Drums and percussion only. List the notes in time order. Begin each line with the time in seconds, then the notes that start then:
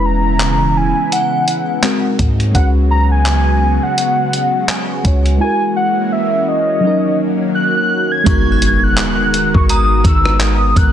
0.40 clap, closed hi-hat
1.12 closed hi-hat
1.48 closed hi-hat
1.83 clap, closed hi-hat
2.19 kick, closed hi-hat
2.40 closed hi-hat
2.55 kick, closed hi-hat
3.26 clap, closed hi-hat
3.98 closed hi-hat
4.33 closed hi-hat
4.69 clap, closed hi-hat
5.05 kick, closed hi-hat
5.26 closed hi-hat
8.26 kick, closed hi-hat
8.62 closed hi-hat
8.97 clap, closed hi-hat
9.34 closed hi-hat
9.54 kick
9.69 closed hi-hat
10.04 kick, closed hi-hat
10.25 cross-stick
10.40 clap, closed hi-hat
10.76 kick, closed hi-hat